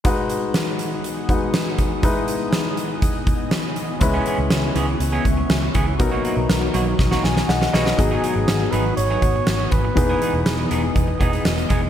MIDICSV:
0, 0, Header, 1, 8, 480
1, 0, Start_track
1, 0, Key_signature, 5, "minor"
1, 0, Tempo, 495868
1, 46, Time_signature, 4, 2, 24, 8
1, 11516, End_track
2, 0, Start_track
2, 0, Title_t, "Ambient pad"
2, 0, Program_c, 0, 92
2, 55, Note_on_c, 0, 59, 72
2, 55, Note_on_c, 0, 87, 78
2, 56, Note_on_c, 0, 80, 67
2, 58, Note_on_c, 0, 78, 66
2, 1952, Note_off_c, 0, 80, 0
2, 1953, Note_off_c, 0, 78, 0
2, 1967, Note_on_c, 0, 75, 63
2, 1968, Note_on_c, 0, 80, 67
2, 3853, Note_off_c, 0, 87, 0
2, 3868, Note_off_c, 0, 75, 0
2, 3893, Note_on_c, 0, 76, 66
2, 3895, Note_on_c, 0, 85, 82
2, 5769, Note_off_c, 0, 80, 0
2, 5791, Note_off_c, 0, 76, 0
2, 5792, Note_off_c, 0, 85, 0
2, 5806, Note_on_c, 0, 78, 64
2, 5807, Note_on_c, 0, 82, 69
2, 5807, Note_on_c, 0, 87, 82
2, 7692, Note_off_c, 0, 59, 0
2, 7707, Note_off_c, 0, 78, 0
2, 7708, Note_off_c, 0, 82, 0
2, 7708, Note_off_c, 0, 87, 0
2, 7727, Note_on_c, 0, 78, 68
2, 7729, Note_on_c, 0, 87, 78
2, 7730, Note_on_c, 0, 80, 64
2, 7731, Note_on_c, 0, 59, 72
2, 9628, Note_off_c, 0, 78, 0
2, 9645, Note_on_c, 0, 75, 67
2, 11516, Note_off_c, 0, 59, 0
2, 11516, Note_off_c, 0, 75, 0
2, 11516, Note_off_c, 0, 80, 0
2, 11516, Note_off_c, 0, 87, 0
2, 11516, End_track
3, 0, Start_track
3, 0, Title_t, "Flugelhorn"
3, 0, Program_c, 1, 56
3, 7724, Note_on_c, 1, 68, 87
3, 8437, Note_on_c, 1, 71, 86
3, 8452, Note_off_c, 1, 68, 0
3, 8676, Note_off_c, 1, 71, 0
3, 8682, Note_on_c, 1, 73, 105
3, 9403, Note_on_c, 1, 71, 91
3, 9417, Note_off_c, 1, 73, 0
3, 10845, Note_off_c, 1, 71, 0
3, 11516, End_track
4, 0, Start_track
4, 0, Title_t, "Grand piano"
4, 0, Program_c, 2, 0
4, 39, Note_on_c, 2, 56, 64
4, 47, Note_on_c, 2, 63, 56
4, 56, Note_on_c, 2, 66, 59
4, 61, Note_on_c, 2, 71, 69
4, 221, Control_c, 2, 64, 127
4, 1219, Note_off_c, 2, 56, 0
4, 1223, Note_off_c, 2, 63, 0
4, 1227, Note_off_c, 2, 66, 0
4, 1230, Note_off_c, 2, 71, 0
4, 1247, Note_on_c, 2, 56, 46
4, 1251, Note_on_c, 2, 63, 43
4, 1257, Note_on_c, 2, 66, 44
4, 1257, Note_on_c, 2, 71, 51
4, 1945, Note_off_c, 2, 56, 0
4, 1953, Note_off_c, 2, 63, 0
4, 1959, Note_on_c, 2, 56, 62
4, 1967, Note_off_c, 2, 71, 0
4, 1968, Note_on_c, 2, 63, 60
4, 1972, Note_off_c, 2, 66, 0
4, 1977, Note_on_c, 2, 64, 61
4, 1979, Control_c, 2, 64, 0
4, 1981, Note_on_c, 2, 71, 77
4, 2145, Control_c, 2, 64, 127
4, 3845, Note_off_c, 2, 56, 0
4, 3849, Note_off_c, 2, 63, 0
4, 3854, Note_off_c, 2, 64, 0
4, 3856, Note_off_c, 2, 71, 0
4, 3871, Note_on_c, 2, 56, 67
4, 3878, Note_on_c, 2, 61, 62
4, 3890, Note_on_c, 2, 64, 63
4, 3894, Note_on_c, 2, 71, 73
4, 3900, Control_c, 2, 64, 0
4, 4061, Control_c, 2, 64, 127
4, 5760, Note_off_c, 2, 56, 0
4, 5764, Note_off_c, 2, 61, 0
4, 5770, Note_off_c, 2, 64, 0
4, 5772, Note_off_c, 2, 71, 0
4, 5796, Note_on_c, 2, 54, 71
4, 5800, Note_on_c, 2, 59, 62
4, 5809, Note_on_c, 2, 63, 60
4, 5816, Note_on_c, 2, 70, 73
4, 5819, Control_c, 2, 64, 0
4, 5975, Control_c, 2, 64, 127
4, 6987, Note_off_c, 2, 70, 0
4, 7004, Note_on_c, 2, 80, 58
4, 7212, Note_off_c, 2, 54, 0
4, 7215, Note_off_c, 2, 59, 0
4, 7219, Note_off_c, 2, 63, 0
4, 7233, Note_off_c, 2, 80, 0
4, 7244, Note_on_c, 2, 78, 60
4, 7252, Note_on_c, 2, 75, 52
4, 7473, Note_off_c, 2, 75, 0
4, 7473, Note_off_c, 2, 78, 0
4, 7488, Note_on_c, 2, 75, 61
4, 7492, Note_on_c, 2, 71, 49
4, 7713, Note_on_c, 2, 54, 59
4, 7721, Note_on_c, 2, 59, 53
4, 7729, Note_on_c, 2, 63, 57
4, 7736, Note_on_c, 2, 68, 66
4, 7739, Control_c, 2, 64, 0
4, 7921, Control_c, 2, 64, 127
4, 7943, Note_off_c, 2, 75, 0
4, 7946, Note_off_c, 2, 71, 0
4, 9602, Note_off_c, 2, 54, 0
4, 9606, Note_off_c, 2, 59, 0
4, 9610, Note_off_c, 2, 63, 0
4, 9613, Note_off_c, 2, 68, 0
4, 9635, Note_on_c, 2, 52, 58
4, 9642, Note_on_c, 2, 59, 54
4, 9648, Note_on_c, 2, 63, 54
4, 9657, Note_on_c, 2, 68, 67
4, 9661, Control_c, 2, 64, 0
4, 9829, Control_c, 2, 64, 127
4, 11516, Note_off_c, 2, 52, 0
4, 11516, Note_off_c, 2, 59, 0
4, 11516, Note_off_c, 2, 63, 0
4, 11516, Note_off_c, 2, 68, 0
4, 11516, End_track
5, 0, Start_track
5, 0, Title_t, "Clean electric guitar"
5, 0, Program_c, 3, 27
5, 4004, Note_on_c, 3, 68, 69
5, 4009, Note_on_c, 3, 61, 71
5, 4013, Note_on_c, 3, 59, 58
5, 4016, Note_on_c, 3, 52, 56
5, 4111, Note_off_c, 3, 52, 0
5, 4117, Note_off_c, 3, 59, 0
5, 4120, Note_off_c, 3, 61, 0
5, 4122, Note_on_c, 3, 52, 62
5, 4124, Note_off_c, 3, 68, 0
5, 4128, Note_on_c, 3, 59, 59
5, 4131, Note_on_c, 3, 61, 68
5, 4136, Note_on_c, 3, 68, 61
5, 4233, Note_off_c, 3, 68, 0
5, 4237, Note_off_c, 3, 61, 0
5, 4242, Note_off_c, 3, 59, 0
5, 4268, Note_off_c, 3, 52, 0
5, 4602, Note_on_c, 3, 52, 73
5, 4609, Note_on_c, 3, 59, 78
5, 4610, Note_on_c, 3, 61, 80
5, 4614, Note_on_c, 3, 68, 92
5, 4709, Note_off_c, 3, 68, 0
5, 4714, Note_off_c, 3, 61, 0
5, 4718, Note_off_c, 3, 59, 0
5, 4789, Note_off_c, 3, 52, 0
5, 4960, Note_on_c, 3, 68, 72
5, 4964, Note_on_c, 3, 61, 73
5, 4971, Note_on_c, 3, 59, 69
5, 4972, Note_on_c, 3, 52, 57
5, 5070, Note_off_c, 3, 52, 0
5, 5074, Note_off_c, 3, 59, 0
5, 5077, Note_off_c, 3, 61, 0
5, 5077, Note_off_c, 3, 68, 0
5, 5563, Note_on_c, 3, 52, 66
5, 5569, Note_on_c, 3, 59, 76
5, 5571, Note_on_c, 3, 61, 72
5, 5577, Note_on_c, 3, 68, 74
5, 5672, Note_off_c, 3, 68, 0
5, 5677, Note_off_c, 3, 61, 0
5, 5680, Note_off_c, 3, 59, 0
5, 5749, Note_off_c, 3, 52, 0
5, 5920, Note_on_c, 3, 66, 71
5, 5925, Note_on_c, 3, 63, 64
5, 5929, Note_on_c, 3, 58, 66
5, 5934, Note_on_c, 3, 54, 54
5, 6030, Note_off_c, 3, 54, 0
5, 6033, Note_off_c, 3, 58, 0
5, 6039, Note_off_c, 3, 63, 0
5, 6040, Note_off_c, 3, 66, 0
5, 6042, Note_on_c, 3, 54, 55
5, 6045, Note_on_c, 3, 58, 58
5, 6050, Note_on_c, 3, 63, 61
5, 6052, Note_on_c, 3, 66, 60
5, 6154, Note_off_c, 3, 66, 0
5, 6156, Note_off_c, 3, 63, 0
5, 6162, Note_off_c, 3, 58, 0
5, 6188, Note_off_c, 3, 54, 0
5, 6523, Note_on_c, 3, 54, 72
5, 6527, Note_on_c, 3, 58, 82
5, 6531, Note_on_c, 3, 63, 91
5, 6534, Note_on_c, 3, 66, 85
5, 6632, Note_off_c, 3, 66, 0
5, 6636, Note_off_c, 3, 63, 0
5, 6642, Note_off_c, 3, 58, 0
5, 6709, Note_off_c, 3, 54, 0
5, 6886, Note_on_c, 3, 66, 75
5, 6891, Note_on_c, 3, 63, 76
5, 6896, Note_on_c, 3, 58, 66
5, 6900, Note_on_c, 3, 54, 70
5, 6999, Note_off_c, 3, 54, 0
5, 7003, Note_off_c, 3, 58, 0
5, 7006, Note_off_c, 3, 63, 0
5, 7007, Note_off_c, 3, 66, 0
5, 7488, Note_on_c, 3, 54, 78
5, 7493, Note_on_c, 3, 58, 78
5, 7494, Note_on_c, 3, 63, 78
5, 7497, Note_on_c, 3, 66, 86
5, 7601, Note_off_c, 3, 66, 0
5, 7604, Note_off_c, 3, 63, 0
5, 7607, Note_off_c, 3, 58, 0
5, 7671, Note_off_c, 3, 54, 0
5, 7850, Note_on_c, 3, 68, 74
5, 7855, Note_on_c, 3, 63, 67
5, 7860, Note_on_c, 3, 59, 66
5, 7861, Note_on_c, 3, 54, 58
5, 7957, Note_off_c, 3, 54, 0
5, 7962, Note_off_c, 3, 59, 0
5, 7966, Note_off_c, 3, 63, 0
5, 7968, Note_on_c, 3, 54, 61
5, 7970, Note_off_c, 3, 68, 0
5, 7974, Note_on_c, 3, 59, 61
5, 7978, Note_on_c, 3, 63, 66
5, 7982, Note_on_c, 3, 68, 73
5, 8076, Note_off_c, 3, 68, 0
5, 8080, Note_off_c, 3, 63, 0
5, 8084, Note_off_c, 3, 59, 0
5, 8112, Note_off_c, 3, 54, 0
5, 8445, Note_on_c, 3, 54, 70
5, 8450, Note_on_c, 3, 59, 68
5, 8453, Note_on_c, 3, 63, 74
5, 8458, Note_on_c, 3, 68, 78
5, 8561, Note_off_c, 3, 68, 0
5, 8567, Note_off_c, 3, 63, 0
5, 8571, Note_off_c, 3, 59, 0
5, 8630, Note_off_c, 3, 54, 0
5, 8813, Note_on_c, 3, 68, 64
5, 8817, Note_on_c, 3, 63, 67
5, 8823, Note_on_c, 3, 59, 63
5, 8826, Note_on_c, 3, 54, 59
5, 8921, Note_off_c, 3, 54, 0
5, 8927, Note_off_c, 3, 59, 0
5, 8930, Note_off_c, 3, 63, 0
5, 8932, Note_off_c, 3, 68, 0
5, 9772, Note_on_c, 3, 68, 70
5, 9774, Note_on_c, 3, 63, 65
5, 9778, Note_on_c, 3, 59, 60
5, 9783, Note_on_c, 3, 56, 58
5, 9879, Note_off_c, 3, 56, 0
5, 9882, Note_off_c, 3, 59, 0
5, 9887, Note_off_c, 3, 63, 0
5, 9891, Note_on_c, 3, 56, 58
5, 9892, Note_off_c, 3, 68, 0
5, 9894, Note_on_c, 3, 59, 60
5, 9899, Note_on_c, 3, 63, 60
5, 9904, Note_on_c, 3, 68, 65
5, 10002, Note_off_c, 3, 68, 0
5, 10009, Note_off_c, 3, 63, 0
5, 10010, Note_off_c, 3, 59, 0
5, 10033, Note_off_c, 3, 56, 0
5, 10368, Note_on_c, 3, 56, 68
5, 10371, Note_on_c, 3, 59, 79
5, 10377, Note_on_c, 3, 63, 80
5, 10380, Note_on_c, 3, 68, 86
5, 10475, Note_off_c, 3, 68, 0
5, 10480, Note_off_c, 3, 63, 0
5, 10483, Note_off_c, 3, 59, 0
5, 10551, Note_off_c, 3, 56, 0
5, 10841, Note_on_c, 3, 56, 79
5, 10847, Note_on_c, 3, 59, 87
5, 10850, Note_on_c, 3, 63, 87
5, 10855, Note_on_c, 3, 68, 93
5, 10951, Note_off_c, 3, 68, 0
5, 10957, Note_off_c, 3, 63, 0
5, 10960, Note_off_c, 3, 59, 0
5, 10963, Note_off_c, 3, 56, 0
5, 10963, Note_on_c, 3, 68, 54
5, 10969, Note_on_c, 3, 63, 51
5, 10972, Note_on_c, 3, 59, 46
5, 10975, Note_on_c, 3, 56, 49
5, 11109, Note_off_c, 3, 68, 0
5, 11112, Note_off_c, 3, 63, 0
5, 11113, Note_off_c, 3, 59, 0
5, 11115, Note_off_c, 3, 56, 0
5, 11319, Note_on_c, 3, 56, 85
5, 11327, Note_on_c, 3, 59, 78
5, 11329, Note_on_c, 3, 63, 88
5, 11334, Note_on_c, 3, 68, 86
5, 11429, Note_off_c, 3, 68, 0
5, 11436, Note_off_c, 3, 63, 0
5, 11440, Note_off_c, 3, 59, 0
5, 11507, Note_off_c, 3, 56, 0
5, 11516, End_track
6, 0, Start_track
6, 0, Title_t, "Picked electric bass"
6, 0, Program_c, 4, 34
6, 3884, Note_on_c, 4, 37, 96
6, 4058, Note_off_c, 4, 37, 0
6, 4244, Note_on_c, 4, 37, 82
6, 4332, Note_off_c, 4, 37, 0
6, 4363, Note_on_c, 4, 37, 87
6, 4537, Note_off_c, 4, 37, 0
6, 4603, Note_on_c, 4, 37, 78
6, 4777, Note_off_c, 4, 37, 0
6, 4842, Note_on_c, 4, 37, 91
6, 5016, Note_off_c, 4, 37, 0
6, 5082, Note_on_c, 4, 37, 90
6, 5257, Note_off_c, 4, 37, 0
6, 5320, Note_on_c, 4, 37, 91
6, 5496, Note_off_c, 4, 37, 0
6, 5564, Note_on_c, 4, 37, 78
6, 5802, Note_off_c, 4, 37, 0
6, 5802, Note_on_c, 4, 35, 92
6, 5977, Note_off_c, 4, 35, 0
6, 6165, Note_on_c, 4, 35, 84
6, 6252, Note_off_c, 4, 35, 0
6, 6288, Note_on_c, 4, 35, 100
6, 6460, Note_off_c, 4, 35, 0
6, 6530, Note_on_c, 4, 35, 91
6, 6702, Note_off_c, 4, 35, 0
6, 6764, Note_on_c, 4, 35, 85
6, 6938, Note_off_c, 4, 35, 0
6, 7013, Note_on_c, 4, 35, 78
6, 7184, Note_off_c, 4, 35, 0
6, 7248, Note_on_c, 4, 35, 92
6, 7420, Note_off_c, 4, 35, 0
6, 7490, Note_on_c, 4, 35, 79
6, 7662, Note_off_c, 4, 35, 0
6, 7728, Note_on_c, 4, 32, 94
6, 7900, Note_off_c, 4, 32, 0
6, 8092, Note_on_c, 4, 32, 83
6, 8176, Note_off_c, 4, 32, 0
6, 8211, Note_on_c, 4, 32, 95
6, 8382, Note_off_c, 4, 32, 0
6, 8447, Note_on_c, 4, 32, 82
6, 8620, Note_off_c, 4, 32, 0
6, 8690, Note_on_c, 4, 32, 88
6, 8862, Note_off_c, 4, 32, 0
6, 8926, Note_on_c, 4, 32, 85
6, 9099, Note_off_c, 4, 32, 0
6, 9172, Note_on_c, 4, 32, 90
6, 9343, Note_off_c, 4, 32, 0
6, 9408, Note_on_c, 4, 32, 87
6, 9580, Note_off_c, 4, 32, 0
6, 9648, Note_on_c, 4, 28, 88
6, 9820, Note_off_c, 4, 28, 0
6, 10006, Note_on_c, 4, 28, 84
6, 10093, Note_off_c, 4, 28, 0
6, 10130, Note_on_c, 4, 28, 94
6, 10302, Note_off_c, 4, 28, 0
6, 10369, Note_on_c, 4, 28, 86
6, 10541, Note_off_c, 4, 28, 0
6, 10605, Note_on_c, 4, 28, 96
6, 10779, Note_off_c, 4, 28, 0
6, 10846, Note_on_c, 4, 28, 86
6, 11019, Note_off_c, 4, 28, 0
6, 11088, Note_on_c, 4, 28, 90
6, 11260, Note_off_c, 4, 28, 0
6, 11328, Note_on_c, 4, 28, 80
6, 11501, Note_off_c, 4, 28, 0
6, 11516, End_track
7, 0, Start_track
7, 0, Title_t, "Muted clean electric guitar strokes"
7, 3887, Note_on_c, 9, 29, 39
7, 3984, Note_off_c, 9, 29, 0
7, 4244, Note_on_c, 9, 29, 45
7, 4341, Note_off_c, 9, 29, 0
7, 4481, Note_on_c, 9, 29, 39
7, 4578, Note_off_c, 9, 29, 0
7, 4720, Note_on_c, 9, 29, 34
7, 4817, Note_off_c, 9, 29, 0
7, 4847, Note_on_c, 9, 29, 37
7, 4944, Note_off_c, 9, 29, 0
7, 5082, Note_on_c, 9, 29, 39
7, 5179, Note_off_c, 9, 29, 0
7, 5202, Note_on_c, 9, 29, 45
7, 5299, Note_off_c, 9, 29, 0
7, 5445, Note_on_c, 9, 29, 49
7, 5542, Note_off_c, 9, 29, 0
7, 5684, Note_on_c, 9, 29, 43
7, 5780, Note_off_c, 9, 29, 0
7, 5799, Note_on_c, 9, 29, 37
7, 5896, Note_off_c, 9, 29, 0
7, 6165, Note_on_c, 9, 29, 44
7, 6262, Note_off_c, 9, 29, 0
7, 6402, Note_on_c, 9, 29, 47
7, 6499, Note_off_c, 9, 29, 0
7, 6644, Note_on_c, 9, 29, 34
7, 6740, Note_off_c, 9, 29, 0
7, 6767, Note_on_c, 9, 29, 31
7, 6864, Note_off_c, 9, 29, 0
7, 7010, Note_on_c, 9, 29, 40
7, 7107, Note_off_c, 9, 29, 0
7, 7133, Note_on_c, 9, 29, 37
7, 7229, Note_off_c, 9, 29, 0
7, 7370, Note_on_c, 9, 29, 46
7, 7466, Note_off_c, 9, 29, 0
7, 7612, Note_on_c, 9, 29, 41
7, 7709, Note_off_c, 9, 29, 0
7, 7728, Note_on_c, 9, 29, 30
7, 7825, Note_off_c, 9, 29, 0
7, 8088, Note_on_c, 9, 29, 41
7, 8185, Note_off_c, 9, 29, 0
7, 8328, Note_on_c, 9, 29, 44
7, 8424, Note_off_c, 9, 29, 0
7, 8573, Note_on_c, 9, 29, 37
7, 8670, Note_off_c, 9, 29, 0
7, 8690, Note_on_c, 9, 29, 31
7, 8786, Note_off_c, 9, 29, 0
7, 8933, Note_on_c, 9, 29, 35
7, 9030, Note_off_c, 9, 29, 0
7, 9057, Note_on_c, 9, 29, 41
7, 9153, Note_off_c, 9, 29, 0
7, 9169, Note_on_c, 9, 29, 38
7, 9265, Note_off_c, 9, 29, 0
7, 9290, Note_on_c, 9, 29, 44
7, 9386, Note_off_c, 9, 29, 0
7, 9530, Note_on_c, 9, 29, 43
7, 9627, Note_off_c, 9, 29, 0
7, 9650, Note_on_c, 9, 29, 32
7, 9747, Note_off_c, 9, 29, 0
7, 10014, Note_on_c, 9, 29, 40
7, 10111, Note_off_c, 9, 29, 0
7, 10251, Note_on_c, 9, 29, 45
7, 10348, Note_off_c, 9, 29, 0
7, 10487, Note_on_c, 9, 29, 37
7, 10584, Note_off_c, 9, 29, 0
7, 10606, Note_on_c, 9, 29, 39
7, 10703, Note_off_c, 9, 29, 0
7, 10724, Note_on_c, 9, 29, 42
7, 10820, Note_off_c, 9, 29, 0
7, 11204, Note_on_c, 9, 29, 47
7, 11301, Note_off_c, 9, 29, 0
7, 11441, Note_on_c, 9, 29, 38
7, 11516, Note_off_c, 9, 29, 0
7, 11516, End_track
8, 0, Start_track
8, 0, Title_t, "Drums"
8, 45, Note_on_c, 9, 42, 81
8, 48, Note_on_c, 9, 36, 95
8, 142, Note_off_c, 9, 42, 0
8, 144, Note_off_c, 9, 36, 0
8, 286, Note_on_c, 9, 42, 64
8, 383, Note_off_c, 9, 42, 0
8, 525, Note_on_c, 9, 38, 92
8, 529, Note_on_c, 9, 42, 77
8, 622, Note_off_c, 9, 38, 0
8, 625, Note_off_c, 9, 42, 0
8, 766, Note_on_c, 9, 42, 76
8, 863, Note_off_c, 9, 42, 0
8, 1010, Note_on_c, 9, 42, 75
8, 1107, Note_off_c, 9, 42, 0
8, 1248, Note_on_c, 9, 36, 75
8, 1252, Note_on_c, 9, 42, 55
8, 1345, Note_off_c, 9, 36, 0
8, 1349, Note_off_c, 9, 42, 0
8, 1487, Note_on_c, 9, 42, 70
8, 1489, Note_on_c, 9, 38, 100
8, 1584, Note_off_c, 9, 42, 0
8, 1586, Note_off_c, 9, 38, 0
8, 1727, Note_on_c, 9, 42, 57
8, 1729, Note_on_c, 9, 36, 78
8, 1824, Note_off_c, 9, 42, 0
8, 1826, Note_off_c, 9, 36, 0
8, 1966, Note_on_c, 9, 42, 80
8, 1968, Note_on_c, 9, 36, 93
8, 2063, Note_off_c, 9, 42, 0
8, 2064, Note_off_c, 9, 36, 0
8, 2205, Note_on_c, 9, 42, 65
8, 2302, Note_off_c, 9, 42, 0
8, 2445, Note_on_c, 9, 38, 91
8, 2448, Note_on_c, 9, 42, 76
8, 2541, Note_off_c, 9, 38, 0
8, 2544, Note_off_c, 9, 42, 0
8, 2685, Note_on_c, 9, 42, 76
8, 2781, Note_off_c, 9, 42, 0
8, 2925, Note_on_c, 9, 42, 79
8, 2926, Note_on_c, 9, 36, 86
8, 3022, Note_off_c, 9, 42, 0
8, 3023, Note_off_c, 9, 36, 0
8, 3164, Note_on_c, 9, 36, 79
8, 3165, Note_on_c, 9, 42, 59
8, 3261, Note_off_c, 9, 36, 0
8, 3262, Note_off_c, 9, 42, 0
8, 3399, Note_on_c, 9, 42, 71
8, 3401, Note_on_c, 9, 38, 96
8, 3496, Note_off_c, 9, 42, 0
8, 3498, Note_off_c, 9, 38, 0
8, 3641, Note_on_c, 9, 42, 58
8, 3738, Note_off_c, 9, 42, 0
8, 3879, Note_on_c, 9, 42, 84
8, 3884, Note_on_c, 9, 36, 100
8, 3976, Note_off_c, 9, 42, 0
8, 3981, Note_off_c, 9, 36, 0
8, 4121, Note_on_c, 9, 42, 63
8, 4218, Note_off_c, 9, 42, 0
8, 4361, Note_on_c, 9, 38, 93
8, 4364, Note_on_c, 9, 42, 78
8, 4457, Note_off_c, 9, 38, 0
8, 4460, Note_off_c, 9, 42, 0
8, 4604, Note_on_c, 9, 42, 79
8, 4701, Note_off_c, 9, 42, 0
8, 4844, Note_on_c, 9, 42, 78
8, 4941, Note_off_c, 9, 42, 0
8, 5084, Note_on_c, 9, 36, 76
8, 5086, Note_on_c, 9, 42, 57
8, 5181, Note_off_c, 9, 36, 0
8, 5183, Note_off_c, 9, 42, 0
8, 5321, Note_on_c, 9, 42, 72
8, 5323, Note_on_c, 9, 38, 101
8, 5418, Note_off_c, 9, 42, 0
8, 5420, Note_off_c, 9, 38, 0
8, 5562, Note_on_c, 9, 42, 59
8, 5566, Note_on_c, 9, 36, 82
8, 5658, Note_off_c, 9, 42, 0
8, 5663, Note_off_c, 9, 36, 0
8, 5803, Note_on_c, 9, 42, 81
8, 5805, Note_on_c, 9, 36, 97
8, 5900, Note_off_c, 9, 42, 0
8, 5902, Note_off_c, 9, 36, 0
8, 6048, Note_on_c, 9, 42, 63
8, 6144, Note_off_c, 9, 42, 0
8, 6287, Note_on_c, 9, 38, 96
8, 6290, Note_on_c, 9, 42, 78
8, 6384, Note_off_c, 9, 38, 0
8, 6387, Note_off_c, 9, 42, 0
8, 6526, Note_on_c, 9, 42, 75
8, 6623, Note_off_c, 9, 42, 0
8, 6767, Note_on_c, 9, 36, 87
8, 6768, Note_on_c, 9, 38, 48
8, 6864, Note_off_c, 9, 36, 0
8, 6865, Note_off_c, 9, 38, 0
8, 6889, Note_on_c, 9, 38, 49
8, 6986, Note_off_c, 9, 38, 0
8, 7010, Note_on_c, 9, 38, 55
8, 7107, Note_off_c, 9, 38, 0
8, 7131, Note_on_c, 9, 38, 55
8, 7228, Note_off_c, 9, 38, 0
8, 7252, Note_on_c, 9, 38, 69
8, 7348, Note_off_c, 9, 38, 0
8, 7373, Note_on_c, 9, 38, 65
8, 7469, Note_off_c, 9, 38, 0
8, 7494, Note_on_c, 9, 38, 78
8, 7591, Note_off_c, 9, 38, 0
8, 7612, Note_on_c, 9, 38, 76
8, 7709, Note_off_c, 9, 38, 0
8, 7731, Note_on_c, 9, 36, 95
8, 7735, Note_on_c, 9, 42, 86
8, 7828, Note_off_c, 9, 36, 0
8, 7831, Note_off_c, 9, 42, 0
8, 7974, Note_on_c, 9, 42, 67
8, 8070, Note_off_c, 9, 42, 0
8, 8208, Note_on_c, 9, 38, 94
8, 8211, Note_on_c, 9, 42, 76
8, 8305, Note_off_c, 9, 38, 0
8, 8308, Note_off_c, 9, 42, 0
8, 8447, Note_on_c, 9, 42, 77
8, 8544, Note_off_c, 9, 42, 0
8, 8686, Note_on_c, 9, 42, 82
8, 8783, Note_off_c, 9, 42, 0
8, 8928, Note_on_c, 9, 36, 78
8, 8928, Note_on_c, 9, 42, 59
8, 9024, Note_off_c, 9, 36, 0
8, 9025, Note_off_c, 9, 42, 0
8, 9164, Note_on_c, 9, 42, 72
8, 9165, Note_on_c, 9, 38, 97
8, 9261, Note_off_c, 9, 42, 0
8, 9262, Note_off_c, 9, 38, 0
8, 9405, Note_on_c, 9, 42, 59
8, 9410, Note_on_c, 9, 36, 84
8, 9502, Note_off_c, 9, 42, 0
8, 9507, Note_off_c, 9, 36, 0
8, 9649, Note_on_c, 9, 42, 80
8, 9650, Note_on_c, 9, 36, 104
8, 9746, Note_off_c, 9, 42, 0
8, 9747, Note_off_c, 9, 36, 0
8, 9890, Note_on_c, 9, 42, 65
8, 9987, Note_off_c, 9, 42, 0
8, 10125, Note_on_c, 9, 38, 100
8, 10128, Note_on_c, 9, 42, 77
8, 10221, Note_off_c, 9, 38, 0
8, 10224, Note_off_c, 9, 42, 0
8, 10367, Note_on_c, 9, 42, 81
8, 10464, Note_off_c, 9, 42, 0
8, 10605, Note_on_c, 9, 42, 78
8, 10607, Note_on_c, 9, 36, 86
8, 10702, Note_off_c, 9, 42, 0
8, 10704, Note_off_c, 9, 36, 0
8, 10847, Note_on_c, 9, 36, 81
8, 10850, Note_on_c, 9, 42, 60
8, 10944, Note_off_c, 9, 36, 0
8, 10947, Note_off_c, 9, 42, 0
8, 10969, Note_on_c, 9, 42, 46
8, 11065, Note_off_c, 9, 42, 0
8, 11084, Note_on_c, 9, 42, 73
8, 11086, Note_on_c, 9, 38, 100
8, 11181, Note_off_c, 9, 42, 0
8, 11183, Note_off_c, 9, 38, 0
8, 11208, Note_on_c, 9, 42, 48
8, 11305, Note_off_c, 9, 42, 0
8, 11325, Note_on_c, 9, 42, 58
8, 11329, Note_on_c, 9, 36, 81
8, 11422, Note_off_c, 9, 42, 0
8, 11426, Note_off_c, 9, 36, 0
8, 11516, End_track
0, 0, End_of_file